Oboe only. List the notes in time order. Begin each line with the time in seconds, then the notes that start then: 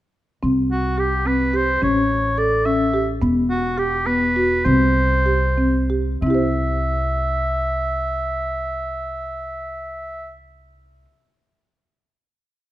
0.72 F#4
0.99 G4
1.27 B4
1.56 C5
1.83 C#5
2.38 D5
2.65 E5
3.50 F#4
3.78 G4
4.06 B4
4.65 C5
6.23 E5